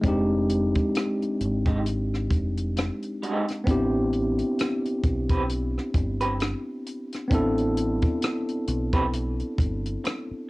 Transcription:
0.01 fingered electric bass F1, tine electric piano G#3 C4 D4, kick, closed hi-hat
0.06 tine electric piano D#4 G4
0.49 closed hi-hat
0.75 kick, closed hi-hat
0.95 cross-stick, closed hi-hat
1.22 closed hi-hat
1.41 fingered electric bass G#1, closed hi-hat
1.66 clean electric guitar G#3 D#4 G4, kick, closed hi-hat
1.86 closed hi-hat
2.14 cross-stick
2.31 fingered electric bass F1, kick, closed hi-hat
2.57 closed hi-hat
2.77 muted clean electric guitar stroke, cross-stick, closed hi-hat
3.03 closed hi-hat
3.23 clean electric guitar G#3 D#4 G4, closed hi-hat
3.48 cross-stick, closed hi-hat
3.64 fingered electric bass A1, tine electric piano B3 C4 D4, kick, closed hi-hat
3.69 tine electric piano E4 G4
4.13 closed hi-hat
4.38 closed hi-hat
4.59 cross-stick, closed hi-hat
4.85 closed hi-hat
5.03 fingered electric bass B1, kick, closed hi-hat
5.29 clean electric guitar C4 G4 B4, kick, closed hi-hat
5.49 closed hi-hat
5.78 cross-stick
5.94 fingered electric bass G1, kick, closed hi-hat
6.21 clean electric guitar C4 G4 B4, closed hi-hat
6.40 cross-stick, closed hi-hat
6.86 closed hi-hat
7.12 cross-stick, closed hi-hat
7.28 fingered electric bass A1, tine electric piano B3 C4 D4, kick, closed hi-hat
7.33 tine electric piano E4 A4
7.58 closed hi-hat
7.77 closed hi-hat
8.02 kick, closed hi-hat
8.22 cross-stick, closed hi-hat
8.49 closed hi-hat
8.68 fingered electric bass B1, closed hi-hat
8.93 clean electric guitar C4 G4 B4, kick, closed hi-hat
9.13 closed hi-hat
9.40 closed hi-hat
9.58 fingered electric bass G1, kick, closed hi-hat
9.85 closed hi-hat
10.04 muted clean electric guitar stroke, cross-stick, closed hi-hat
10.31 muted fingered electric bass stroke

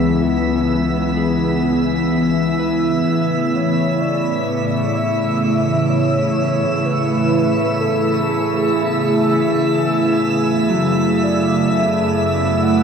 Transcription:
Already playing: cello section C#2, ambient pad C#3 E3 B3 E4, synth drone C#3 B3, clean electric guitar F#3 E4, soft synth lead G#4, synth texture E5 E6
0.22 soft synth lead B4, clean electric guitar E5
1.17 clean electric guitar G#4
2.60 clean electric guitar B4
3.07 cello section A2
3.55 soft synth lead C#5
4.01 soft synth lead D5
4.14 ambient pad A3
4.47 soft synth lead D5
4.98 soft synth lead E5
5.90 soft synth lead C#5
6.86 soft synth lead B4
7.81 soft synth lead A4
8.28 soft synth lead G#4
8.78 soft synth lead G#4
10.70 cello section F#2, clean electric guitar F#3
11.06 ambient pad F#3
11.23 soft synth lead D5
11.69 soft synth lead E5
11.99 ambient pad F#4
12.17 soft synth lead E5
12.63 soft synth lead F#5

